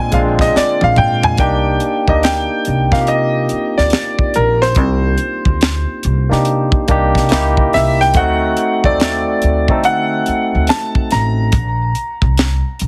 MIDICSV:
0, 0, Header, 1, 7, 480
1, 0, Start_track
1, 0, Tempo, 845070
1, 787, Time_signature, 4, 2, 24, 8
1, 7313, End_track
2, 0, Start_track
2, 0, Title_t, "Grand piano"
2, 0, Program_c, 0, 0
2, 0, Note_on_c, 0, 80, 99
2, 74, Note_off_c, 0, 80, 0
2, 77, Note_on_c, 0, 77, 94
2, 110, Note_off_c, 0, 77, 0
2, 233, Note_on_c, 0, 75, 83
2, 316, Note_off_c, 0, 75, 0
2, 322, Note_on_c, 0, 74, 88
2, 457, Note_off_c, 0, 74, 0
2, 476, Note_on_c, 0, 77, 89
2, 554, Note_on_c, 0, 79, 90
2, 692, Note_off_c, 0, 79, 0
2, 705, Note_on_c, 0, 80, 82
2, 773, Note_off_c, 0, 77, 0
2, 784, Note_off_c, 0, 80, 0
2, 792, Note_on_c, 0, 79, 77
2, 1186, Note_on_c, 0, 75, 68
2, 1194, Note_off_c, 0, 79, 0
2, 1271, Note_on_c, 0, 79, 79
2, 1273, Note_off_c, 0, 75, 0
2, 1663, Note_on_c, 0, 77, 76
2, 1673, Note_off_c, 0, 79, 0
2, 1751, Note_on_c, 0, 75, 72
2, 1752, Note_off_c, 0, 77, 0
2, 2118, Note_off_c, 0, 75, 0
2, 2145, Note_on_c, 0, 74, 72
2, 2474, Note_on_c, 0, 70, 71
2, 2480, Note_off_c, 0, 74, 0
2, 2623, Note_on_c, 0, 72, 88
2, 2627, Note_off_c, 0, 70, 0
2, 4396, Note_on_c, 0, 76, 84
2, 4442, Note_off_c, 0, 72, 0
2, 4534, Note_off_c, 0, 76, 0
2, 4548, Note_on_c, 0, 79, 89
2, 4634, Note_off_c, 0, 79, 0
2, 4638, Note_on_c, 0, 78, 87
2, 5002, Note_off_c, 0, 78, 0
2, 5028, Note_on_c, 0, 74, 86
2, 5595, Note_on_c, 0, 78, 92
2, 5608, Note_off_c, 0, 74, 0
2, 6048, Note_off_c, 0, 78, 0
2, 6074, Note_on_c, 0, 81, 89
2, 6316, Note_on_c, 0, 82, 94
2, 6318, Note_off_c, 0, 81, 0
2, 7313, Note_off_c, 0, 82, 0
2, 7313, End_track
3, 0, Start_track
3, 0, Title_t, "Tine electric piano"
3, 0, Program_c, 1, 4
3, 0, Control_c, 1, 64, 127
3, 0, Note_on_c, 1, 56, 87
3, 0, Note_on_c, 1, 60, 79
3, 0, Note_on_c, 1, 62, 81
3, 0, Note_on_c, 1, 65, 127
3, 0, Note_on_c, 1, 68, 100
3, 67, Note_off_c, 1, 56, 0
3, 67, Note_on_c, 1, 56, 74
3, 73, Note_off_c, 1, 60, 0
3, 73, Note_on_c, 1, 60, 68
3, 77, Note_off_c, 1, 62, 0
3, 77, Note_on_c, 1, 62, 66
3, 84, Note_off_c, 1, 65, 0
3, 84, Note_on_c, 1, 65, 81
3, 705, Note_off_c, 1, 56, 0
3, 708, Note_off_c, 1, 60, 0
3, 710, Note_off_c, 1, 62, 0
3, 713, Note_off_c, 1, 65, 0
3, 787, Note_on_c, 1, 58, 82
3, 792, Note_on_c, 1, 62, 74
3, 795, Control_c, 1, 64, 0
3, 797, Note_off_c, 1, 68, 0
3, 797, Note_on_c, 1, 63, 76
3, 804, Note_on_c, 1, 67, 91
3, 902, Control_c, 1, 64, 127
3, 1108, Note_off_c, 1, 58, 0
3, 1110, Note_off_c, 1, 62, 0
3, 1113, Note_off_c, 1, 63, 0
3, 1116, Note_off_c, 1, 67, 0
3, 1179, Note_on_c, 1, 58, 59
3, 1184, Note_on_c, 1, 62, 50
3, 1189, Note_on_c, 1, 63, 56
3, 1196, Note_on_c, 1, 67, 62
3, 1564, Note_off_c, 1, 58, 0
3, 1567, Note_off_c, 1, 62, 0
3, 1569, Note_off_c, 1, 63, 0
3, 1572, Note_off_c, 1, 67, 0
3, 1658, Note_on_c, 1, 58, 64
3, 1662, Note_on_c, 1, 60, 54
3, 1668, Note_on_c, 1, 63, 53
3, 1674, Note_on_c, 1, 65, 53
3, 1694, Note_off_c, 1, 65, 0
3, 1711, Note_on_c, 1, 67, 69
3, 2445, Note_off_c, 1, 58, 0
3, 2447, Note_off_c, 1, 60, 0
3, 2450, Note_off_c, 1, 63, 0
3, 2471, Note_off_c, 1, 67, 0
3, 3575, Note_on_c, 1, 58, 70
3, 3582, Note_on_c, 1, 62, 65
3, 3588, Note_on_c, 1, 63, 69
3, 3592, Note_on_c, 1, 67, 73
3, 3864, Note_off_c, 1, 58, 0
3, 3867, Note_off_c, 1, 62, 0
3, 3870, Note_off_c, 1, 63, 0
3, 3872, Note_off_c, 1, 67, 0
3, 3908, Note_on_c, 1, 58, 76
3, 3914, Note_on_c, 1, 62, 72
3, 3922, Note_on_c, 1, 63, 73
3, 3926, Note_on_c, 1, 67, 92
3, 4142, Note_off_c, 1, 58, 0
3, 4149, Note_off_c, 1, 63, 0
3, 4149, Note_on_c, 1, 58, 78
3, 4151, Note_off_c, 1, 62, 0
3, 4156, Note_off_c, 1, 67, 0
3, 4156, Control_c, 1, 64, 0
3, 4156, Note_on_c, 1, 63, 76
3, 4161, Note_on_c, 1, 64, 76
3, 4166, Note_on_c, 1, 67, 83
3, 4252, Control_c, 1, 64, 127
3, 4573, Note_off_c, 1, 58, 0
3, 4576, Note_off_c, 1, 63, 0
3, 4579, Note_off_c, 1, 64, 0
3, 4581, Note_off_c, 1, 67, 0
3, 4629, Note_on_c, 1, 57, 92
3, 4635, Control_c, 1, 64, 0
3, 4636, Note_on_c, 1, 60, 83
3, 4639, Note_on_c, 1, 63, 79
3, 4646, Note_on_c, 1, 66, 92
3, 4748, Control_c, 1, 64, 127
3, 4949, Note_off_c, 1, 57, 0
3, 4952, Note_off_c, 1, 60, 0
3, 4954, Note_off_c, 1, 63, 0
3, 4957, Note_off_c, 1, 66, 0
3, 5021, Note_on_c, 1, 57, 64
3, 5027, Note_on_c, 1, 60, 60
3, 5032, Note_on_c, 1, 63, 58
3, 5036, Note_on_c, 1, 69, 67
3, 5405, Note_off_c, 1, 57, 0
3, 5408, Note_off_c, 1, 60, 0
3, 5410, Note_off_c, 1, 63, 0
3, 5413, Note_off_c, 1, 69, 0
3, 5503, Note_on_c, 1, 57, 64
3, 5508, Note_on_c, 1, 60, 64
3, 5514, Note_on_c, 1, 63, 63
3, 5519, Note_on_c, 1, 69, 76
3, 6287, Note_off_c, 1, 57, 0
3, 6289, Note_off_c, 1, 60, 0
3, 6292, Note_off_c, 1, 63, 0
3, 6295, Note_off_c, 1, 69, 0
3, 6554, Control_c, 1, 64, 0
3, 6659, Control_c, 1, 64, 127
3, 7313, End_track
4, 0, Start_track
4, 0, Title_t, "Analog synth pad"
4, 0, Program_c, 2, 89
4, 0, Note_on_c, 2, 50, 77
4, 0, Note_on_c, 2, 56, 71
4, 0, Note_on_c, 2, 58, 87
4, 768, Note_off_c, 2, 50, 0
4, 769, Note_off_c, 2, 56, 0
4, 769, Note_off_c, 2, 58, 0
4, 7313, End_track
5, 0, Start_track
5, 0, Title_t, "Upright bass"
5, 0, Program_c, 3, 32
5, 75, Note_on_c, 3, 34, 89
5, 285, Note_off_c, 3, 34, 0
5, 468, Note_on_c, 3, 34, 80
5, 542, Note_off_c, 3, 34, 0
5, 554, Note_on_c, 3, 46, 101
5, 765, Note_off_c, 3, 46, 0
5, 791, Note_on_c, 3, 36, 81
5, 1003, Note_off_c, 3, 36, 0
5, 1183, Note_on_c, 3, 38, 75
5, 1395, Note_off_c, 3, 38, 0
5, 1518, Note_on_c, 3, 36, 81
5, 1648, Note_off_c, 3, 36, 0
5, 1662, Note_on_c, 3, 48, 79
5, 1952, Note_off_c, 3, 48, 0
5, 2149, Note_on_c, 3, 38, 70
5, 2223, Note_off_c, 3, 38, 0
5, 2477, Note_on_c, 3, 34, 83
5, 2707, Note_off_c, 3, 34, 0
5, 2707, Note_on_c, 3, 36, 92
5, 2921, Note_off_c, 3, 36, 0
5, 3102, Note_on_c, 3, 38, 81
5, 3314, Note_off_c, 3, 38, 0
5, 3434, Note_on_c, 3, 36, 85
5, 3566, Note_off_c, 3, 36, 0
5, 3586, Note_on_c, 3, 48, 74
5, 3796, Note_off_c, 3, 48, 0
5, 3916, Note_on_c, 3, 36, 82
5, 4048, Note_off_c, 3, 36, 0
5, 4065, Note_on_c, 3, 48, 72
5, 4141, Note_off_c, 3, 48, 0
5, 4157, Note_on_c, 3, 37, 96
5, 4366, Note_off_c, 3, 37, 0
5, 4398, Note_on_c, 3, 36, 77
5, 4607, Note_off_c, 3, 36, 0
5, 4632, Note_on_c, 3, 38, 87
5, 4843, Note_off_c, 3, 38, 0
5, 5025, Note_on_c, 3, 39, 80
5, 5236, Note_off_c, 3, 39, 0
5, 5358, Note_on_c, 3, 38, 82
5, 5488, Note_off_c, 3, 38, 0
5, 5504, Note_on_c, 3, 50, 86
5, 5794, Note_off_c, 3, 50, 0
5, 5991, Note_on_c, 3, 38, 78
5, 6064, Note_off_c, 3, 38, 0
5, 6317, Note_on_c, 3, 33, 88
5, 6526, Note_off_c, 3, 33, 0
5, 6552, Note_on_c, 3, 34, 91
5, 6763, Note_off_c, 3, 34, 0
5, 6945, Note_on_c, 3, 36, 84
5, 7156, Note_off_c, 3, 36, 0
5, 7278, Note_on_c, 3, 34, 85
5, 7313, Note_off_c, 3, 34, 0
5, 7313, End_track
6, 0, Start_track
6, 0, Title_t, "Muted upright bass strokes"
6, 315, Note_on_c, 9, 29, 51
6, 372, Note_off_c, 9, 29, 0
6, 1996, Note_on_c, 9, 29, 42
6, 2053, Note_off_c, 9, 29, 0
6, 5838, Note_on_c, 9, 29, 46
6, 5895, Note_off_c, 9, 29, 0
6, 7313, End_track
7, 0, Start_track
7, 0, Title_t, "Drums"
7, 67, Note_on_c, 9, 42, 63
7, 70, Note_on_c, 9, 36, 88
7, 124, Note_off_c, 9, 42, 0
7, 127, Note_off_c, 9, 36, 0
7, 221, Note_on_c, 9, 36, 89
7, 231, Note_on_c, 9, 38, 35
7, 277, Note_off_c, 9, 36, 0
7, 288, Note_off_c, 9, 38, 0
7, 319, Note_on_c, 9, 38, 56
7, 376, Note_off_c, 9, 38, 0
7, 461, Note_on_c, 9, 48, 60
7, 518, Note_off_c, 9, 48, 0
7, 547, Note_on_c, 9, 45, 86
7, 604, Note_off_c, 9, 45, 0
7, 701, Note_on_c, 9, 43, 91
7, 758, Note_off_c, 9, 43, 0
7, 781, Note_on_c, 9, 42, 79
7, 786, Note_on_c, 9, 36, 100
7, 838, Note_off_c, 9, 42, 0
7, 843, Note_off_c, 9, 36, 0
7, 1023, Note_on_c, 9, 42, 55
7, 1080, Note_off_c, 9, 42, 0
7, 1179, Note_on_c, 9, 36, 74
7, 1236, Note_off_c, 9, 36, 0
7, 1268, Note_on_c, 9, 42, 71
7, 1276, Note_on_c, 9, 38, 100
7, 1324, Note_off_c, 9, 42, 0
7, 1333, Note_off_c, 9, 38, 0
7, 1505, Note_on_c, 9, 42, 60
7, 1562, Note_off_c, 9, 42, 0
7, 1657, Note_on_c, 9, 36, 87
7, 1668, Note_on_c, 9, 38, 31
7, 1714, Note_off_c, 9, 36, 0
7, 1725, Note_off_c, 9, 38, 0
7, 1744, Note_on_c, 9, 42, 70
7, 1801, Note_off_c, 9, 42, 0
7, 1983, Note_on_c, 9, 42, 58
7, 2040, Note_off_c, 9, 42, 0
7, 2148, Note_on_c, 9, 38, 31
7, 2204, Note_off_c, 9, 38, 0
7, 2216, Note_on_c, 9, 42, 71
7, 2233, Note_on_c, 9, 38, 92
7, 2273, Note_off_c, 9, 42, 0
7, 2289, Note_off_c, 9, 38, 0
7, 2378, Note_on_c, 9, 36, 79
7, 2434, Note_off_c, 9, 36, 0
7, 2465, Note_on_c, 9, 42, 56
7, 2522, Note_off_c, 9, 42, 0
7, 2625, Note_on_c, 9, 38, 32
7, 2682, Note_off_c, 9, 38, 0
7, 2696, Note_on_c, 9, 42, 75
7, 2704, Note_on_c, 9, 36, 100
7, 2753, Note_off_c, 9, 42, 0
7, 2761, Note_off_c, 9, 36, 0
7, 2940, Note_on_c, 9, 42, 55
7, 2997, Note_off_c, 9, 42, 0
7, 3098, Note_on_c, 9, 36, 71
7, 3154, Note_off_c, 9, 36, 0
7, 3187, Note_on_c, 9, 42, 73
7, 3196, Note_on_c, 9, 38, 102
7, 3244, Note_off_c, 9, 42, 0
7, 3252, Note_off_c, 9, 38, 0
7, 3426, Note_on_c, 9, 42, 62
7, 3482, Note_off_c, 9, 42, 0
7, 3591, Note_on_c, 9, 38, 32
7, 3648, Note_off_c, 9, 38, 0
7, 3664, Note_on_c, 9, 42, 72
7, 3720, Note_off_c, 9, 42, 0
7, 3817, Note_on_c, 9, 36, 82
7, 3873, Note_off_c, 9, 36, 0
7, 3906, Note_on_c, 9, 42, 55
7, 3910, Note_on_c, 9, 36, 78
7, 3963, Note_off_c, 9, 42, 0
7, 3967, Note_off_c, 9, 36, 0
7, 4061, Note_on_c, 9, 36, 80
7, 4071, Note_on_c, 9, 38, 32
7, 4118, Note_off_c, 9, 36, 0
7, 4128, Note_off_c, 9, 38, 0
7, 4141, Note_on_c, 9, 42, 69
7, 4157, Note_on_c, 9, 38, 91
7, 4197, Note_off_c, 9, 42, 0
7, 4214, Note_off_c, 9, 38, 0
7, 4301, Note_on_c, 9, 36, 82
7, 4358, Note_off_c, 9, 36, 0
7, 4391, Note_on_c, 9, 46, 45
7, 4402, Note_on_c, 9, 38, 30
7, 4448, Note_off_c, 9, 46, 0
7, 4459, Note_off_c, 9, 38, 0
7, 4551, Note_on_c, 9, 38, 31
7, 4608, Note_off_c, 9, 38, 0
7, 4621, Note_on_c, 9, 42, 85
7, 4626, Note_on_c, 9, 36, 98
7, 4678, Note_off_c, 9, 42, 0
7, 4683, Note_off_c, 9, 36, 0
7, 4866, Note_on_c, 9, 42, 58
7, 4922, Note_off_c, 9, 42, 0
7, 5020, Note_on_c, 9, 36, 71
7, 5077, Note_off_c, 9, 36, 0
7, 5111, Note_on_c, 9, 42, 73
7, 5119, Note_on_c, 9, 38, 101
7, 5167, Note_off_c, 9, 42, 0
7, 5176, Note_off_c, 9, 38, 0
7, 5349, Note_on_c, 9, 42, 66
7, 5406, Note_off_c, 9, 42, 0
7, 5500, Note_on_c, 9, 36, 81
7, 5556, Note_off_c, 9, 36, 0
7, 5587, Note_on_c, 9, 42, 74
7, 5644, Note_off_c, 9, 42, 0
7, 5828, Note_on_c, 9, 42, 60
7, 5885, Note_off_c, 9, 42, 0
7, 6062, Note_on_c, 9, 42, 66
7, 6079, Note_on_c, 9, 38, 91
7, 6119, Note_off_c, 9, 42, 0
7, 6135, Note_off_c, 9, 38, 0
7, 6220, Note_on_c, 9, 36, 79
7, 6277, Note_off_c, 9, 36, 0
7, 6308, Note_on_c, 9, 42, 63
7, 6319, Note_on_c, 9, 38, 33
7, 6365, Note_off_c, 9, 42, 0
7, 6376, Note_off_c, 9, 38, 0
7, 6544, Note_on_c, 9, 42, 82
7, 6547, Note_on_c, 9, 36, 110
7, 6600, Note_off_c, 9, 42, 0
7, 6604, Note_off_c, 9, 36, 0
7, 6788, Note_on_c, 9, 42, 58
7, 6845, Note_off_c, 9, 42, 0
7, 6939, Note_on_c, 9, 36, 75
7, 6996, Note_off_c, 9, 36, 0
7, 7029, Note_on_c, 9, 42, 76
7, 7038, Note_on_c, 9, 38, 101
7, 7086, Note_off_c, 9, 42, 0
7, 7095, Note_off_c, 9, 38, 0
7, 7267, Note_on_c, 9, 42, 65
7, 7313, Note_off_c, 9, 42, 0
7, 7313, End_track
0, 0, End_of_file